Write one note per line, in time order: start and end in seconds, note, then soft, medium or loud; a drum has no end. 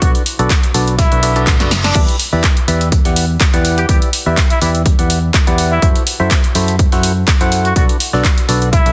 0.02 0.11 B1 loud
0.02 0.22 D4 medium
0.02 0.22 F#4 medium
0.02 0.10 F#4 medium
0.02 0.22 A4 medium
0.02 0.22 B4 medium
0.02 0.22 D5 medium
0.02 kick loud
0.02 closed hi-hat medium
0.02 tambourine medium
0.15 closed hi-hat medium
0.26 open hi-hat loud
0.26 tambourine medium
0.39 0.47 B1 medium
0.39 0.51 D4 medium
0.39 0.51 F#4 medium
0.39 0.51 A4 medium
0.39 0.51 B4 medium
0.39 0.51 D5 loud
0.39 closed hi-hat soft
0.50 kick loud
0.50 snare loud
0.50 clap loud
0.50 closed hi-hat medium
0.50 tambourine medium
0.63 closed hi-hat medium
0.74 1.06 B1 medium
0.74 0.95 D4 medium
0.74 0.95 F#4 medium
0.74 0.95 A4 medium
0.74 0.95 B4 medium
0.74 0.95 D5 loud
0.74 open hi-hat loud
0.74 tambourine medium
0.88 closed hi-hat soft
0.99 1.47 E4 medium
0.99 kick loud
0.99 snare loud
0.99 closed hi-hat medium
0.99 tambourine medium
0.99 reverse cymbal medium
1.12 1.60 B1 medium
1.12 1.21 D4 medium
1.12 1.21 F#4 medium
1.12 1.21 A4 medium
1.12 1.21 B4 medium
1.12 1.21 E5 medium
1.12 closed hi-hat medium
1.23 1.34 D4 medium
1.23 1.34 F#4 medium
1.23 1.34 A4 medium
1.23 1.34 B4 medium
1.23 1.34 D5 medium
1.23 open hi-hat loud
1.23 tambourine medium
1.36 1.57 D4 medium
1.36 1.57 F#4 medium
1.36 1.57 A4 medium
1.36 1.57 B4 medium
1.36 1.57 D5 loud
1.36 closed hi-hat soft
1.47 kick loud
1.47 snare loud
1.47 clap loud
1.47 closed hi-hat medium
1.47 tambourine medium
1.60 1.90 F#1 medium
1.60 1.72 D4 medium
1.60 1.72 F#4 medium
1.60 1.72 A4 medium
1.60 1.72 B4 medium
1.60 1.72 D5 loud
1.60 snare medium
1.60 closed hi-hat medium
1.71 snare medium
1.71 open hi-hat loud
1.71 tambourine medium
1.84 2.01 D4 medium
1.84 snare medium
1.84 closed hi-hat soft
1.95 2.05 E2 loud
1.95 2.16 E4 medium
1.95 2.16 G4 medium
1.95 2.16 B4 medium
1.95 2.16 D5 medium
1.95 2.16 E5 medium
1.95 kick loud
1.95 closed hi-hat medium
1.95 crash medium
1.95 tambourine medium
2.08 closed hi-hat soft
2.08 closed hi-hat medium
2.19 open hi-hat loud
2.19 tambourine medium
2.33 2.41 E2 medium
2.33 2.44 E4 loud
2.33 2.44 G4 medium
2.33 2.44 B4 medium
2.33 2.44 D5 medium
2.33 2.44 E5 loud
2.44 kick loud
2.44 snare loud
2.44 clap loud
2.44 closed hi-hat medium
2.44 tambourine medium
2.57 closed hi-hat medium
2.68 2.99 E2 medium
2.68 2.89 E4 medium
2.68 2.89 G4 medium
2.68 2.89 B4 medium
2.68 2.89 D5 medium
2.68 2.89 E5 medium
2.68 open hi-hat loud
2.68 tambourine medium
2.81 closed hi-hat soft
2.92 kick loud
2.92 closed hi-hat medium
2.92 tambourine medium
3.05 3.36 E2 medium
3.05 3.25 E4 medium
3.05 3.25 G4 medium
3.05 3.25 B4 medium
3.05 3.25 D5 medium
3.05 3.25 F#5 medium
3.05 snare soft
3.05 closed hi-hat medium
3.16 open hi-hat loud
3.16 tambourine medium
3.40 kick loud
3.40 snare loud
3.40 clap loud
3.40 closed hi-hat medium
3.40 tambourine medium
3.54 3.84 E2 medium
3.54 3.86 E4 loud
3.54 3.86 G4 medium
3.54 3.86 B4 medium
3.54 3.86 D5 medium
3.54 3.86 F#5 loud
3.54 closed hi-hat soft
3.54 closed hi-hat medium
3.65 open hi-hat loud
3.65 tambourine medium
3.78 3.85 G4 medium
3.78 closed hi-hat soft
3.89 3.98 E2 loud
3.89 4.10 E4 medium
3.89 4.10 G4 medium
3.89 3.97 G4 medium
3.89 4.10 B4 medium
3.89 4.10 D5 medium
3.89 4.10 E5 medium
3.89 kick loud
3.89 closed hi-hat medium
3.89 tambourine medium
4.02 closed hi-hat medium
4.13 open hi-hat loud
4.13 tambourine medium
4.26 4.34 E2 loud
4.26 4.38 E4 loud
4.26 4.38 G4 medium
4.26 4.38 B4 medium
4.26 4.38 D5 medium
4.26 4.38 E5 loud
4.37 kick loud
4.37 snare loud
4.37 clap loud
4.37 closed hi-hat medium
4.37 tambourine medium
4.50 4.58 E4 medium
4.50 closed hi-hat medium
4.61 4.93 E2 medium
4.61 4.70 E4 medium
4.61 4.82 E4 medium
4.61 4.82 G4 medium
4.61 4.82 B4 medium
4.61 4.82 D5 medium
4.61 4.82 E5 medium
4.61 open hi-hat loud
4.61 tambourine medium
4.75 closed hi-hat soft
4.86 kick loud
4.86 closed hi-hat medium
4.86 tambourine medium
4.99 5.29 E2 medium
4.99 5.19 E4 medium
4.99 5.19 G4 medium
4.99 5.19 B4 medium
4.99 5.19 D5 medium
4.99 5.19 F#5 medium
4.99 closed hi-hat medium
5.10 open hi-hat loud
5.10 tambourine medium
5.34 kick loud
5.34 snare loud
5.34 clap loud
5.34 closed hi-hat medium
5.34 tambourine medium
5.47 5.78 E2 medium
5.47 5.80 E4 loud
5.47 5.80 G4 medium
5.47 5.80 B4 medium
5.47 5.80 D5 medium
5.47 5.80 F#5 loud
5.47 closed hi-hat medium
5.58 open hi-hat loud
5.58 tambourine medium
5.71 5.88 E4 medium
5.82 5.92 F#2 loud
5.82 6.03 E4 medium
5.82 6.03 F#4 medium
5.82 6.03 A4 medium
5.82 6.03 C5 medium
5.82 6.03 E5 medium
5.82 kick loud
5.82 closed hi-hat medium
5.82 tambourine medium
5.95 closed hi-hat soft
6.07 open hi-hat loud
6.07 tambourine medium
6.20 6.28 F#2 medium
6.20 6.32 E4 loud
6.20 6.32 F#4 medium
6.20 6.32 A4 medium
6.20 6.32 C5 medium
6.20 6.32 E5 loud
6.31 kick loud
6.31 snare loud
6.31 clap loud
6.31 closed hi-hat medium
6.31 tambourine medium
6.44 closed hi-hat soft
6.55 6.86 F#2 medium
6.55 6.76 E4 medium
6.55 6.76 F#4 medium
6.55 6.76 A4 medium
6.55 6.76 C5 medium
6.55 6.76 E5 loud
6.55 open hi-hat loud
6.55 tambourine medium
6.68 closed hi-hat soft
6.79 kick loud
6.79 closed hi-hat medium
6.79 tambourine medium
6.92 7.23 F#2 medium
6.92 7.12 E4 medium
6.92 7.12 F#4 medium
6.92 7.12 A4 medium
6.92 7.12 C5 medium
6.92 7.12 F#5 medium
6.92 snare soft
6.92 closed hi-hat medium
7.03 open hi-hat loud
7.03 tambourine medium
7.28 kick loud
7.28 snare loud
7.28 clap loud
7.28 closed hi-hat medium
7.28 tambourine medium
7.41 7.71 F#2 loud
7.41 7.73 E4 loud
7.41 7.73 F#4 medium
7.41 7.73 A4 medium
7.41 7.73 C5 medium
7.41 7.73 F#5 loud
7.41 closed hi-hat soft
7.52 open hi-hat loud
7.52 tambourine medium
7.65 7.72 F#4 medium
7.65 closed hi-hat soft
7.76 7.85 B1 loud
7.76 7.97 D4 medium
7.76 7.97 F#4 medium
7.76 7.84 F#4 medium
7.76 7.97 A4 medium
7.76 7.97 B4 medium
7.76 7.97 D5 medium
7.76 kick loud
7.76 closed hi-hat medium
7.76 tambourine medium
7.89 closed hi-hat medium
8.00 open hi-hat loud
8.00 tambourine medium
8.13 8.21 B1 medium
8.13 8.25 D4 loud
8.13 8.25 F#4 medium
8.13 8.25 A4 medium
8.13 8.25 B4 medium
8.13 8.25 D5 loud
8.13 snare soft
8.24 kick loud
8.24 clap loud
8.24 closed hi-hat medium
8.24 tambourine medium
8.38 closed hi-hat soft
8.49 8.80 B1 medium
8.49 8.69 D4 medium
8.49 8.69 F#4 medium
8.49 8.69 A4 medium
8.49 8.69 B4 medium
8.49 8.69 D5 medium
8.49 open hi-hat loud
8.49 tambourine medium
8.62 closed hi-hat soft
8.73 8.93 E4 medium
8.73 kick loud
8.73 closed hi-hat medium
8.73 tambourine medium
8.86 8.93 B1 medium
8.86 8.93 D4 medium
8.86 8.93 F#4 medium
8.86 8.93 A4 medium
8.86 8.93 B4 medium
8.86 8.93 E5 medium
8.86 closed hi-hat soft